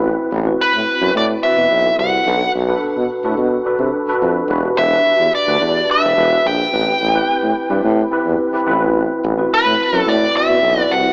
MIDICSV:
0, 0, Header, 1, 4, 480
1, 0, Start_track
1, 0, Tempo, 557103
1, 37, Time_signature, 4, 2, 24, 8
1, 9589, End_track
2, 0, Start_track
2, 0, Title_t, "Lead electric guitar"
2, 0, Program_c, 0, 29
2, 530, Note_on_c, 0, 71, 79
2, 970, Note_off_c, 0, 71, 0
2, 1008, Note_on_c, 0, 74, 87
2, 1071, Note_off_c, 0, 74, 0
2, 1234, Note_on_c, 0, 76, 88
2, 1681, Note_off_c, 0, 76, 0
2, 1717, Note_on_c, 0, 78, 88
2, 2163, Note_off_c, 0, 78, 0
2, 4121, Note_on_c, 0, 76, 82
2, 4603, Note_off_c, 0, 76, 0
2, 4607, Note_on_c, 0, 74, 76
2, 5088, Note_off_c, 0, 74, 0
2, 5092, Note_on_c, 0, 76, 91
2, 5572, Note_on_c, 0, 79, 91
2, 5579, Note_off_c, 0, 76, 0
2, 7451, Note_off_c, 0, 79, 0
2, 8217, Note_on_c, 0, 71, 73
2, 8596, Note_off_c, 0, 71, 0
2, 8596, Note_on_c, 0, 69, 73
2, 8689, Note_on_c, 0, 74, 85
2, 8703, Note_off_c, 0, 69, 0
2, 8929, Note_off_c, 0, 74, 0
2, 8932, Note_on_c, 0, 76, 98
2, 9311, Note_off_c, 0, 76, 0
2, 9311, Note_on_c, 0, 74, 98
2, 9404, Note_on_c, 0, 78, 82
2, 9421, Note_off_c, 0, 74, 0
2, 9589, Note_off_c, 0, 78, 0
2, 9589, End_track
3, 0, Start_track
3, 0, Title_t, "Tine electric piano"
3, 0, Program_c, 1, 4
3, 0, Control_c, 1, 64, 127
3, 0, Note_on_c, 1, 60, 78
3, 0, Note_on_c, 1, 64, 74
3, 0, Note_on_c, 1, 66, 83
3, 0, Note_on_c, 1, 71, 87
3, 272, Note_off_c, 1, 60, 0
3, 274, Note_off_c, 1, 64, 0
3, 276, Note_off_c, 1, 66, 0
3, 278, Note_off_c, 1, 71, 0
3, 393, Note_on_c, 1, 60, 59
3, 397, Note_on_c, 1, 64, 49
3, 402, Note_on_c, 1, 66, 61
3, 406, Note_on_c, 1, 71, 64
3, 716, Note_off_c, 1, 60, 0
3, 718, Note_off_c, 1, 64, 0
3, 720, Note_off_c, 1, 66, 0
3, 722, Note_off_c, 1, 71, 0
3, 871, Note_on_c, 1, 60, 68
3, 876, Note_on_c, 1, 64, 57
3, 879, Note_on_c, 1, 66, 61
3, 883, Note_on_c, 1, 71, 78
3, 1115, Note_off_c, 1, 60, 0
3, 1117, Note_off_c, 1, 64, 0
3, 1119, Note_off_c, 1, 66, 0
3, 1120, Note_off_c, 1, 71, 0
3, 1239, Note_on_c, 1, 60, 67
3, 1241, Note_on_c, 1, 64, 62
3, 1244, Note_on_c, 1, 66, 66
3, 1247, Note_on_c, 1, 71, 76
3, 1479, Note_off_c, 1, 60, 0
3, 1480, Note_off_c, 1, 64, 0
3, 1481, Note_off_c, 1, 66, 0
3, 1482, Note_off_c, 1, 71, 0
3, 1595, Note_on_c, 1, 60, 64
3, 1598, Note_on_c, 1, 64, 62
3, 1604, Note_on_c, 1, 66, 60
3, 1606, Note_on_c, 1, 69, 70
3, 1837, Note_off_c, 1, 60, 0
3, 1838, Note_off_c, 1, 64, 0
3, 1841, Note_off_c, 1, 66, 0
3, 1842, Note_off_c, 1, 69, 0
3, 1953, Note_on_c, 1, 62, 62
3, 1958, Note_on_c, 1, 66, 54
3, 1960, Note_on_c, 1, 69, 57
3, 1965, Control_c, 1, 64, 0
3, 1965, Note_on_c, 1, 71, 68
3, 2105, Control_c, 1, 64, 127
3, 2195, Note_off_c, 1, 62, 0
3, 2198, Note_off_c, 1, 66, 0
3, 2199, Note_off_c, 1, 69, 0
3, 2201, Note_off_c, 1, 71, 0
3, 2311, Note_on_c, 1, 62, 71
3, 2315, Note_on_c, 1, 66, 65
3, 2322, Note_on_c, 1, 69, 69
3, 2323, Note_on_c, 1, 71, 80
3, 2634, Note_off_c, 1, 62, 0
3, 2636, Note_off_c, 1, 66, 0
3, 2640, Note_off_c, 1, 69, 0
3, 2640, Note_off_c, 1, 71, 0
3, 2793, Note_on_c, 1, 62, 81
3, 2797, Note_on_c, 1, 66, 72
3, 2800, Note_on_c, 1, 69, 66
3, 2802, Note_on_c, 1, 71, 87
3, 3035, Note_off_c, 1, 62, 0
3, 3037, Note_off_c, 1, 66, 0
3, 3039, Note_off_c, 1, 69, 0
3, 3040, Note_off_c, 1, 71, 0
3, 3148, Note_on_c, 1, 62, 74
3, 3153, Note_on_c, 1, 66, 72
3, 3154, Note_on_c, 1, 69, 73
3, 3159, Note_on_c, 1, 71, 86
3, 3393, Note_off_c, 1, 62, 0
3, 3395, Note_off_c, 1, 66, 0
3, 3396, Note_off_c, 1, 69, 0
3, 3398, Note_off_c, 1, 71, 0
3, 3515, Note_on_c, 1, 62, 72
3, 3521, Note_on_c, 1, 66, 72
3, 3523, Note_on_c, 1, 69, 69
3, 3525, Note_on_c, 1, 71, 88
3, 3756, Note_off_c, 1, 62, 0
3, 3759, Note_off_c, 1, 66, 0
3, 3760, Note_off_c, 1, 69, 0
3, 3761, Note_off_c, 1, 71, 0
3, 3875, Note_on_c, 1, 62, 67
3, 3877, Note_on_c, 1, 66, 69
3, 3883, Note_on_c, 1, 67, 65
3, 3886, Note_on_c, 1, 71, 80
3, 3887, Control_c, 1, 64, 0
3, 4012, Control_c, 1, 64, 127
3, 4116, Note_off_c, 1, 62, 0
3, 4117, Note_off_c, 1, 66, 0
3, 4120, Note_off_c, 1, 67, 0
3, 4122, Note_off_c, 1, 71, 0
3, 4235, Note_on_c, 1, 62, 61
3, 4242, Note_on_c, 1, 66, 57
3, 4242, Note_on_c, 1, 67, 58
3, 4247, Note_on_c, 1, 71, 59
3, 4557, Note_off_c, 1, 62, 0
3, 4560, Note_off_c, 1, 66, 0
3, 4560, Note_off_c, 1, 67, 0
3, 4563, Note_off_c, 1, 71, 0
3, 4714, Note_on_c, 1, 62, 67
3, 4718, Note_on_c, 1, 66, 61
3, 4721, Note_on_c, 1, 67, 62
3, 4725, Note_on_c, 1, 71, 76
3, 4956, Note_off_c, 1, 62, 0
3, 4958, Note_off_c, 1, 66, 0
3, 4960, Note_off_c, 1, 67, 0
3, 4962, Note_off_c, 1, 71, 0
3, 5080, Note_on_c, 1, 62, 64
3, 5080, Note_on_c, 1, 66, 64
3, 5086, Note_on_c, 1, 67, 62
3, 5090, Note_on_c, 1, 71, 74
3, 5306, Note_off_c, 1, 62, 0
3, 5310, Note_off_c, 1, 66, 0
3, 5316, Note_on_c, 1, 62, 70
3, 5319, Note_off_c, 1, 71, 0
3, 5321, Note_off_c, 1, 67, 0
3, 5321, Note_on_c, 1, 66, 61
3, 5325, Note_on_c, 1, 68, 67
3, 5328, Control_c, 1, 64, 0
3, 5329, Note_on_c, 1, 71, 80
3, 5412, Note_off_c, 1, 62, 0
3, 5414, Note_off_c, 1, 66, 0
3, 5417, Note_off_c, 1, 68, 0
3, 5419, Note_off_c, 1, 71, 0
3, 5439, Note_on_c, 1, 62, 60
3, 5442, Note_on_c, 1, 66, 57
3, 5447, Note_on_c, 1, 68, 59
3, 5449, Note_on_c, 1, 71, 71
3, 5475, Control_c, 1, 64, 127
3, 5679, Note_off_c, 1, 62, 0
3, 5680, Note_off_c, 1, 66, 0
3, 5683, Note_off_c, 1, 68, 0
3, 5684, Note_off_c, 1, 71, 0
3, 5793, Note_on_c, 1, 60, 66
3, 5798, Note_on_c, 1, 64, 63
3, 5802, Note_on_c, 1, 67, 60
3, 5804, Note_on_c, 1, 71, 73
3, 5810, Control_c, 1, 64, 0
3, 5940, Control_c, 1, 64, 127
3, 6036, Note_off_c, 1, 60, 0
3, 6039, Note_off_c, 1, 64, 0
3, 6041, Note_off_c, 1, 67, 0
3, 6041, Note_off_c, 1, 71, 0
3, 6154, Note_on_c, 1, 60, 74
3, 6157, Note_on_c, 1, 64, 61
3, 6159, Note_on_c, 1, 67, 70
3, 6162, Note_on_c, 1, 71, 87
3, 6477, Note_off_c, 1, 60, 0
3, 6479, Note_off_c, 1, 64, 0
3, 6479, Note_off_c, 1, 67, 0
3, 6481, Note_off_c, 1, 71, 0
3, 6631, Note_on_c, 1, 60, 78
3, 6635, Note_on_c, 1, 64, 80
3, 6637, Note_on_c, 1, 67, 74
3, 6638, Note_on_c, 1, 71, 84
3, 6875, Note_off_c, 1, 60, 0
3, 6878, Note_off_c, 1, 64, 0
3, 6879, Note_off_c, 1, 67, 0
3, 6879, Note_off_c, 1, 71, 0
3, 6992, Note_on_c, 1, 60, 80
3, 6997, Note_on_c, 1, 64, 79
3, 7002, Note_on_c, 1, 67, 70
3, 7004, Note_on_c, 1, 71, 83
3, 7236, Note_off_c, 1, 60, 0
3, 7238, Note_off_c, 1, 64, 0
3, 7241, Note_off_c, 1, 67, 0
3, 7242, Note_off_c, 1, 71, 0
3, 7349, Note_on_c, 1, 60, 81
3, 7356, Note_on_c, 1, 67, 71
3, 7358, Note_on_c, 1, 64, 71
3, 7363, Note_on_c, 1, 71, 80
3, 7454, Note_off_c, 1, 60, 0
3, 7458, Note_off_c, 1, 64, 0
3, 7464, Note_off_c, 1, 71, 0
3, 7465, Note_on_c, 1, 60, 85
3, 7468, Note_on_c, 1, 64, 83
3, 7468, Note_on_c, 1, 65, 61
3, 7475, Note_on_c, 1, 71, 93
3, 7477, Note_off_c, 1, 67, 0
3, 7488, Control_c, 1, 64, 0
3, 7528, Note_on_c, 1, 66, 73
3, 7530, Note_off_c, 1, 65, 0
3, 7618, Control_c, 1, 64, 127
3, 7952, Note_off_c, 1, 60, 0
3, 7954, Note_off_c, 1, 64, 0
3, 7957, Note_off_c, 1, 71, 0
3, 7984, Note_off_c, 1, 66, 0
3, 8073, Note_on_c, 1, 60, 61
3, 8080, Note_on_c, 1, 64, 59
3, 8082, Note_on_c, 1, 66, 59
3, 8086, Note_on_c, 1, 71, 66
3, 8398, Note_off_c, 1, 60, 0
3, 8401, Note_off_c, 1, 64, 0
3, 8402, Note_off_c, 1, 66, 0
3, 8404, Note_off_c, 1, 71, 0
3, 8554, Note_on_c, 1, 60, 68
3, 8556, Note_on_c, 1, 64, 66
3, 8564, Note_on_c, 1, 66, 65
3, 8564, Note_on_c, 1, 71, 79
3, 8798, Note_off_c, 1, 60, 0
3, 8799, Note_off_c, 1, 64, 0
3, 8803, Note_off_c, 1, 66, 0
3, 8803, Note_off_c, 1, 71, 0
3, 8916, Note_on_c, 1, 60, 71
3, 8918, Note_on_c, 1, 64, 63
3, 8924, Note_on_c, 1, 66, 65
3, 8929, Note_on_c, 1, 74, 82
3, 9159, Note_off_c, 1, 60, 0
3, 9160, Note_off_c, 1, 64, 0
3, 9163, Note_off_c, 1, 66, 0
3, 9166, Note_off_c, 1, 74, 0
3, 9280, Note_on_c, 1, 60, 61
3, 9283, Note_on_c, 1, 64, 63
3, 9289, Note_on_c, 1, 66, 64
3, 9289, Note_on_c, 1, 71, 75
3, 9522, Note_off_c, 1, 60, 0
3, 9523, Note_off_c, 1, 64, 0
3, 9526, Note_off_c, 1, 66, 0
3, 9526, Note_off_c, 1, 71, 0
3, 9589, End_track
4, 0, Start_track
4, 0, Title_t, "Tuba"
4, 0, Program_c, 2, 58
4, 0, Note_on_c, 2, 33, 99
4, 125, Note_off_c, 2, 33, 0
4, 271, Note_on_c, 2, 33, 106
4, 437, Note_off_c, 2, 33, 0
4, 513, Note_on_c, 2, 45, 45
4, 562, Note_off_c, 2, 45, 0
4, 632, Note_on_c, 2, 45, 80
4, 715, Note_off_c, 2, 45, 0
4, 872, Note_on_c, 2, 42, 86
4, 956, Note_off_c, 2, 42, 0
4, 992, Note_on_c, 2, 45, 104
4, 1157, Note_off_c, 2, 45, 0
4, 1351, Note_on_c, 2, 47, 72
4, 1435, Note_off_c, 2, 47, 0
4, 1472, Note_on_c, 2, 35, 81
4, 1637, Note_off_c, 2, 35, 0
4, 1712, Note_on_c, 2, 36, 78
4, 1877, Note_off_c, 2, 36, 0
4, 1953, Note_on_c, 2, 35, 102
4, 2117, Note_off_c, 2, 35, 0
4, 2194, Note_on_c, 2, 35, 97
4, 2358, Note_off_c, 2, 35, 0
4, 2438, Note_on_c, 2, 47, 43
4, 2485, Note_off_c, 2, 47, 0
4, 2555, Note_on_c, 2, 47, 83
4, 2637, Note_off_c, 2, 47, 0
4, 2789, Note_on_c, 2, 45, 77
4, 2873, Note_off_c, 2, 45, 0
4, 2908, Note_on_c, 2, 47, 86
4, 3074, Note_off_c, 2, 47, 0
4, 3268, Note_on_c, 2, 48, 81
4, 3352, Note_off_c, 2, 48, 0
4, 3630, Note_on_c, 2, 41, 80
4, 3795, Note_off_c, 2, 41, 0
4, 3869, Note_on_c, 2, 28, 101
4, 4035, Note_off_c, 2, 28, 0
4, 4108, Note_on_c, 2, 28, 103
4, 4275, Note_off_c, 2, 28, 0
4, 4354, Note_on_c, 2, 40, 40
4, 4402, Note_off_c, 2, 40, 0
4, 4470, Note_on_c, 2, 40, 86
4, 4554, Note_off_c, 2, 40, 0
4, 4716, Note_on_c, 2, 38, 88
4, 4798, Note_off_c, 2, 38, 0
4, 4837, Note_on_c, 2, 40, 91
4, 5000, Note_off_c, 2, 40, 0
4, 5198, Note_on_c, 2, 28, 80
4, 5279, Note_off_c, 2, 28, 0
4, 5316, Note_on_c, 2, 28, 94
4, 5480, Note_off_c, 2, 28, 0
4, 5555, Note_on_c, 2, 34, 77
4, 5719, Note_off_c, 2, 34, 0
4, 5797, Note_on_c, 2, 33, 92
4, 5961, Note_off_c, 2, 33, 0
4, 6039, Note_on_c, 2, 33, 98
4, 6202, Note_off_c, 2, 33, 0
4, 6277, Note_on_c, 2, 45, 41
4, 6325, Note_off_c, 2, 45, 0
4, 6394, Note_on_c, 2, 45, 85
4, 6477, Note_off_c, 2, 45, 0
4, 6635, Note_on_c, 2, 43, 86
4, 6718, Note_off_c, 2, 43, 0
4, 6753, Note_on_c, 2, 45, 99
4, 6919, Note_off_c, 2, 45, 0
4, 7115, Note_on_c, 2, 40, 88
4, 7198, Note_off_c, 2, 40, 0
4, 7477, Note_on_c, 2, 33, 91
4, 7805, Note_off_c, 2, 33, 0
4, 7957, Note_on_c, 2, 33, 91
4, 8121, Note_off_c, 2, 33, 0
4, 8192, Note_on_c, 2, 45, 39
4, 8242, Note_off_c, 2, 45, 0
4, 8316, Note_on_c, 2, 45, 80
4, 8399, Note_off_c, 2, 45, 0
4, 8553, Note_on_c, 2, 42, 87
4, 8637, Note_off_c, 2, 42, 0
4, 8674, Note_on_c, 2, 45, 91
4, 8840, Note_off_c, 2, 45, 0
4, 9038, Note_on_c, 2, 47, 80
4, 9121, Note_off_c, 2, 47, 0
4, 9154, Note_on_c, 2, 35, 81
4, 9320, Note_off_c, 2, 35, 0
4, 9399, Note_on_c, 2, 36, 77
4, 9563, Note_off_c, 2, 36, 0
4, 9589, End_track
0, 0, End_of_file